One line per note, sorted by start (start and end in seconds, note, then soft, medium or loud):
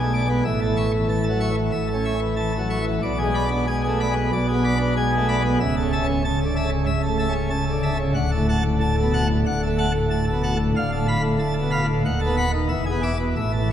0.00 0.42 B1 medium
0.00 0.42 B2 medium
0.00 0.21 A3 medium
0.00 0.12 G#4 medium
0.14 0.27 D5 medium
0.14 0.27 D6 medium
0.25 0.43 G#3 medium
0.29 0.43 B3 medium
0.45 1.70 A1 medium
0.45 1.70 A2 medium
0.45 0.60 E5 medium
0.61 0.76 A4 medium
0.67 0.86 E3 medium
0.77 0.91 E5 medium
0.77 0.91 C#6 medium
0.93 1.07 E3 medium
1.09 1.28 E3 medium
1.09 1.24 A5 medium
1.24 1.39 A4 medium
1.30 1.49 F#3 medium
1.40 1.55 E5 medium
1.40 1.55 C#6 medium
1.51 1.54 E3 medium
1.56 1.72 E3 medium
1.72 2.98 A1 medium
1.72 2.98 A2 medium
1.72 1.87 E5 medium
1.88 2.04 A4 medium
1.94 2.14 C#4 medium
2.05 2.20 E5 medium
2.05 2.19 C#6 medium
2.21 2.34 E3 medium
2.36 2.57 E3 medium
2.36 2.52 A5 medium
2.53 2.68 A4 medium
2.59 2.78 F#3 medium
2.70 2.84 E5 medium
2.70 2.84 C#6 medium
2.81 2.84 E3 medium
2.86 3.00 E3 medium
3.03 4.31 B1 loud
3.03 4.31 B2 loud
3.03 3.17 D5 medium
3.19 3.33 G#4 medium
3.24 3.43 G#3 medium
3.35 3.49 D5 medium
3.35 3.49 B5 loud
3.45 3.65 D4 medium
3.51 3.66 B3 medium
3.67 3.87 G#3 medium
3.67 3.82 G#5 loud
3.84 3.98 G#4 medium
3.89 4.07 A3 medium
4.00 4.13 D5 medium
4.00 4.14 B5 medium
4.11 4.30 G#3 medium
4.16 4.30 B3 medium
4.33 5.57 B1 medium
4.33 5.57 B2 medium
4.33 4.47 D5 medium
4.48 4.62 G#4 medium
4.54 4.73 B3 medium
4.64 4.78 D5 medium
4.64 4.78 B5 medium
4.75 4.94 D4 medium
4.80 4.94 B3 medium
4.97 5.15 G#3 medium
4.97 5.11 G#5 medium
5.12 5.26 G#4 medium
5.17 5.35 A3 medium
5.29 5.42 D5 medium
5.29 5.42 B5 medium
5.39 5.57 G#3 medium
5.45 5.58 B3 medium
5.60 6.85 C#1 loud
5.60 6.85 C#2 loud
5.60 5.74 E5 loud
5.77 5.91 A4 medium
5.82 6.01 C#3 medium
5.93 6.06 E5 medium
5.93 6.06 A5 loud
6.03 6.22 C#4 medium
6.09 6.22 C#3 medium
6.25 6.43 C#3 medium
6.25 6.39 A5 loud
6.40 6.54 A4 medium
6.45 6.63 D3 medium
6.56 6.69 E5 medium
6.56 6.70 A5 medium
6.66 6.69 C#3 medium
6.71 6.86 C#3 medium
6.86 8.12 C#1 loud
6.86 8.12 C#2 medium
6.86 7.01 E5 loud
7.03 7.17 A4 medium
7.07 7.27 A3 medium
7.19 7.33 E5 medium
7.19 7.33 A5 loud
7.29 7.49 C#4 medium
7.34 7.48 C#3 medium
7.50 7.70 C#3 medium
7.50 7.65 A5 medium
7.66 7.81 A4 medium
7.72 7.91 D3 medium
7.83 7.97 E5 medium
7.83 7.97 A5 medium
7.94 7.97 C#3 medium
7.99 8.13 C#3 medium
8.15 9.44 D1 loud
8.15 9.44 D2 loud
8.15 8.30 F#5 loud
8.32 8.46 A4 medium
8.37 8.56 A2 medium
8.49 8.62 F#5 medium
8.49 8.63 A5 loud
8.65 8.79 A2 medium
8.81 9.00 A2 medium
8.81 8.95 A5 loud
8.97 9.11 A4 medium
9.03 9.21 B2 medium
9.13 9.27 F#5 medium
9.13 9.27 A5 medium
9.24 9.28 A2 medium
9.30 9.44 A2 medium
9.46 10.71 D1 medium
9.46 10.71 D2 medium
9.46 9.60 F#5 loud
9.63 9.86 A3 medium
9.63 9.77 A4 medium
9.78 9.92 F#5 medium
9.78 9.92 A5 medium
9.94 10.08 A2 medium
10.10 10.30 A2 medium
10.10 10.25 A5 medium
10.27 10.41 A4 medium
10.33 10.50 B2 medium
10.43 10.57 F#5 medium
10.43 10.57 A5 medium
10.55 10.58 A2 medium
10.60 10.73 A2 medium
10.76 12.01 D1 loud
10.76 12.01 D2 loud
10.76 10.90 F5 medium
10.92 11.06 A4 medium
10.98 11.16 A2 medium
11.08 11.21 F5 medium
11.08 11.21 B5 loud
11.23 11.37 A2 medium
11.39 11.58 A2 medium
11.39 11.54 A5 medium
11.56 11.70 A4 medium
11.62 11.80 B2 medium
11.71 11.86 F5 medium
11.71 11.85 B5 medium
11.84 11.87 A2 medium
11.89 12.02 A2 medium
12.05 12.68 D#1 loud
12.05 12.68 D#2 loud
12.05 12.19 F#5 medium
12.21 12.35 A4 medium
12.26 12.46 B3 medium
12.37 12.51 F#5 medium
12.37 12.51 B5 loud
12.53 12.67 D#3 medium
12.69 13.34 E1 medium
12.69 13.34 E2 medium
12.69 12.84 E5 medium
12.86 13.01 G#4 medium
12.92 13.11 B3 medium
13.03 13.17 E5 medium
13.03 13.17 D6 loud
13.20 13.34 B2 medium
13.37 13.72 A1 medium
13.37 13.72 A2 loud
13.37 13.51 E5 medium
13.53 13.68 A4 medium
13.60 13.72 E3 medium